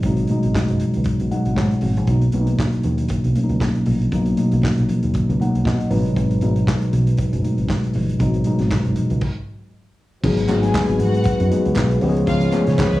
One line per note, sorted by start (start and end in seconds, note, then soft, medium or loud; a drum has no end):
0.00 0.24 G#1 loud
0.00 2.09 A#2 medium
0.00 0.04 B2 medium
0.00 0.21 B2 medium
0.00 0.04 F#3 medium
0.00 0.05 G#3 medium
0.00 2.09 C#4 medium
0.00 0.06 D#4 medium
0.00 kick medium
0.00 closed hi-hat medium
0.00 muted conga soft
0.04 0.22 F#3 medium
0.04 0.22 G#3 medium
0.04 0.22 D#4 medium
0.17 closed hi-hat soft
0.27 0.97 B2 medium
0.27 0.98 F#3 medium
0.27 0.98 G#3 medium
0.27 0.98 D#4 medium
0.27 closed hi-hat medium
0.27 muted conga soft
0.27 high conga medium
0.43 0.53 G#1 medium
0.43 closed hi-hat soft
0.43 high conga medium
0.54 kick loud
0.54 snare loud
0.54 clap medium
0.54 muted conga soft
0.54 high conga medium
0.68 0.78 F#1 medium
0.68 closed hi-hat soft
0.79 closed hi-hat medium
0.79 low conga medium
0.94 1.05 C#2 medium
0.94 closed hi-hat soft
1.04 kick loud
1.04 closed hi-hat medium
1.04 muted conga soft
1.20 1.29 B1 medium
1.20 closed hi-hat soft
1.31 1.81 B2 medium
1.31 1.81 F#3 medium
1.31 1.82 G#3 medium
1.31 1.82 D#4 medium
1.31 1.55 F#5 medium
1.31 closed hi-hat medium
1.31 high conga medium
1.45 1.55 G#1 medium
1.45 closed hi-hat soft
1.56 1.68 G#2 loud
1.56 2.04 C#5 medium
1.56 kick loud
1.56 snare medium
1.56 clap medium
1.56 muted conga soft
1.56 high conga medium
1.71 closed hi-hat soft
1.81 1.97 G#1 medium
1.81 open hi-hat medium
1.81 high conga medium
1.81 low conga medium
1.97 2.06 A#1 medium
1.97 closed hi-hat soft
2.07 2.28 B1 medium
2.07 2.26 B2 medium
2.07 2.26 F#3 medium
2.07 2.26 A#3 medium
2.07 2.27 D#4 medium
2.07 kick loud
2.07 closed hi-hat medium
2.07 muted conga soft
2.21 closed hi-hat soft
2.32 2.54 B1 loud
2.32 3.01 B2 medium
2.32 3.01 F#3 medium
2.32 3.02 A#3 medium
2.32 2.41 D4 medium
2.32 closed hi-hat medium
2.32 high conga medium
2.41 3.05 D#4 medium
2.47 closed hi-hat medium
2.47 high conga medium
2.59 kick loud
2.59 snare loud
2.59 clap medium
2.59 muted conga soft
2.59 high conga medium
2.72 closed hi-hat soft
2.83 3.05 D#2 medium
2.83 closed hi-hat medium
2.83 muted conga soft
2.83 low conga medium
2.98 closed hi-hat medium
3.08 kick loud
3.08 closed hi-hat medium
3.08 muted conga soft
3.24 3.33 B1 medium
3.24 closed hi-hat medium
3.35 3.86 B2 medium
3.35 3.86 F#3 medium
3.35 3.86 A#3 medium
3.35 3.43 C#4 medium
3.35 closed hi-hat medium
3.35 muted conga soft
3.35 high conga medium
3.44 3.90 D#4 medium
3.49 3.59 C#2 medium
3.49 closed hi-hat soft
3.60 kick loud
3.60 snare medium
3.60 clap medium
3.60 muted conga soft
3.60 high conga medium
3.75 closed hi-hat soft
3.86 4.07 A#1 medium
3.86 open hi-hat medium
3.86 muted conga soft
3.86 high conga medium
3.86 low conga medium
4.01 closed hi-hat soft
4.12 4.33 B1 loud
4.12 4.30 B2 medium
4.12 4.30 F#3 medium
4.12 4.30 A#3 medium
4.12 4.30 D#4 medium
4.12 kick medium
4.12 closed hi-hat medium
4.25 closed hi-hat soft
4.37 5.05 B2 medium
4.37 5.05 F#3 medium
4.37 5.06 A#3 medium
4.37 5.06 D#4 medium
4.37 closed hi-hat medium
4.37 high conga medium
4.51 4.61 B1 medium
4.51 closed hi-hat soft
4.51 high conga medium
4.62 kick loud
4.62 snare loud
4.62 clap medium
4.62 muted conga soft
4.62 high conga medium
4.77 4.87 A#1 medium
4.77 closed hi-hat soft
4.89 closed hi-hat medium
4.89 low conga medium
5.03 5.12 D#2 medium
5.03 closed hi-hat soft
5.14 kick loud
5.14 closed hi-hat medium
5.29 5.38 C#2 medium
5.29 closed hi-hat soft
5.40 5.90 B2 medium
5.40 5.89 F#3 medium
5.40 5.90 A#3 medium
5.40 5.90 D#4 medium
5.40 5.64 F#5 medium
5.40 closed hi-hat medium
5.40 high conga medium
5.55 5.63 B1 medium
5.55 closed hi-hat soft
5.64 5.76 B2 loud
5.64 5.89 D#5 medium
5.64 kick loud
5.64 snare medium
5.64 clap medium
5.64 high conga medium
5.80 closed hi-hat soft
5.90 6.05 G#1 loud
5.90 5.97 A#2 medium
5.90 6.32 F#3 medium
5.90 6.33 G#3 medium
5.90 6.33 D#4 medium
5.90 6.14 B4 medium
5.90 open hi-hat medium
5.90 high conga medium
5.90 low conga medium
5.96 6.35 B2 loud
6.05 6.16 G1 medium
6.05 closed hi-hat soft
6.16 6.36 G#1 loud
6.16 kick medium
6.16 closed hi-hat medium
6.16 muted conga soft
6.30 closed hi-hat soft
6.40 6.62 G#1 loud
6.40 7.09 B2 medium
6.40 7.09 F#3 medium
6.40 7.09 G#3 medium
6.40 7.10 D#4 medium
6.40 closed hi-hat medium
6.40 high conga medium
6.56 closed hi-hat soft
6.56 high conga medium
6.67 kick loud
6.67 snare loud
6.67 clap medium
6.67 muted conga soft
6.67 high conga medium
6.81 closed hi-hat soft
6.93 7.13 B1 medium
6.93 closed hi-hat medium
6.93 muted conga soft
6.93 low conga medium
7.07 closed hi-hat medium
7.17 kick loud
7.17 closed hi-hat medium
7.33 7.41 F#1 medium
7.33 closed hi-hat medium
7.42 7.93 B2 medium
7.42 7.93 F#3 medium
7.42 7.93 G#3 medium
7.42 7.94 D#4 medium
7.42 closed hi-hat medium
7.42 muted conga soft
7.42 high conga medium
7.57 7.66 G#1 medium
7.57 closed hi-hat soft
7.69 kick loud
7.69 snare medium
7.69 clap medium
7.69 muted conga soft
7.69 high conga medium
7.84 closed hi-hat soft
7.93 8.15 G1 medium
7.93 open hi-hat medium
7.93 muted conga soft
7.93 high conga soft
7.93 low conga medium
8.09 closed hi-hat soft
8.19 8.40 G#1 loud
8.19 8.37 B2 medium
8.19 8.38 F#3 medium
8.19 8.38 G#3 medium
8.19 8.38 D#4 medium
8.19 kick medium
8.19 closed hi-hat medium
8.19 low conga medium
8.34 closed hi-hat soft
8.44 8.52 A#2 medium
8.44 9.13 F#3 medium
8.44 9.13 G#3 medium
8.44 9.14 D#4 loud
8.44 closed hi-hat medium
8.44 high conga medium
8.51 9.16 B2 medium
8.59 8.69 G#1 medium
8.59 snare soft
8.59 closed hi-hat medium
8.59 high conga medium
8.71 kick loud
8.71 snare loud
8.71 clap medium
8.71 muted conga soft
8.71 high conga medium
8.84 8.94 F#1 medium
8.84 closed hi-hat soft
8.96 closed hi-hat medium
8.96 muted conga soft
8.96 low conga medium
9.10 9.20 C#2 medium
9.10 closed hi-hat medium
9.21 kick loud
9.21 crash medium
10.21 10.44 G#1 loud
10.21 10.41 F#3 loud
10.21 11.99 G#3 medium
10.21 10.42 G#3 medium
10.21 10.42 B3 medium
10.21 10.42 D#4 medium
10.21 11.99 F#4 medium
10.21 11.99 B4 medium
10.21 kick loud
10.21 crash loud
10.21 low conga medium
10.25 10.42 G#4 loud
10.37 closed hi-hat medium
10.48 10.69 G#1 loud
10.48 11.17 F#3 medium
10.48 11.17 G#3 medium
10.48 11.17 B3 medium
10.48 11.17 D#4 medium
10.48 10.60 F#4 medium
10.48 11.17 G#4 medium
10.48 10.60 F#5 loud
10.48 clap medium
10.48 closed hi-hat medium
10.48 high conga medium
10.63 10.98 G#4 medium
10.63 10.98 G#5 medium
10.63 closed hi-hat medium
10.63 high conga medium
10.75 kick loud
10.75 snare loud
10.75 clap loud
10.75 high conga medium
10.89 10.98 G#1 medium
10.89 closed hi-hat medium
10.99 11.21 G#2 medium
10.99 11.48 F#4 medium
10.99 11.49 F#5 loud
10.99 closed hi-hat medium
10.99 low conga medium
11.14 closed hi-hat medium
11.24 kick loud
11.24 closed hi-hat medium
11.24 muted conga soft
11.40 11.49 F#2 medium
11.40 closed hi-hat medium
11.50 12.01 F#3 medium
11.50 12.01 G#3 medium
11.50 12.01 B3 medium
11.50 12.01 D#4 medium
11.50 12.02 G#4 medium
11.50 closed hi-hat medium
11.50 high conga medium
11.65 11.75 C#2 medium
11.65 closed hi-hat soft
11.76 11.97 B1 loud
11.76 kick loud
11.76 snare loud
11.76 clap loud
11.76 muted conga soft
11.76 high conga medium
11.78 clap medium
11.91 closed hi-hat soft
11.99 12.23 C#2 loud
11.99 12.44 F3 loud
11.99 12.44 G#3 loud
11.99 13.00 B3 medium
11.99 12.44 B3 loud
11.99 13.00 F4 medium
11.99 13.00 C#5 medium
11.99 open hi-hat medium
11.99 high conga medium
11.99 low conga medium
12.03 12.45 C#4 loud
12.03 12.09 G4 loud
12.09 12.48 G#4 loud
12.16 closed hi-hat medium
12.27 12.48 C#2 loud
12.27 12.48 F4 loud
12.27 12.48 F5 loud
12.27 kick medium
12.27 closed hi-hat medium
12.27 muted conga soft
12.27 low conga medium
12.41 closed hi-hat soft
12.52 13.00 F3 medium
12.52 13.00 G#3 medium
12.52 13.00 B3 medium
12.52 13.00 C#4 medium
12.52 13.00 G#4 loud
12.52 clap medium
12.52 closed hi-hat medium
12.52 muted conga soft
12.52 high conga medium
12.67 12.76 C#3 loud
12.67 12.76 C#4 medium
12.67 12.76 C#5 medium
12.67 snare soft
12.67 closed hi-hat medium
12.67 high conga medium
12.78 13.00 B3 loud
12.78 13.00 B4 loud
12.78 kick loud
12.78 snare loud
12.78 clap loud
12.78 clap medium
12.78 muted conga soft
12.78 high conga medium
12.92 13.00 C#2 medium
12.92 closed hi-hat soft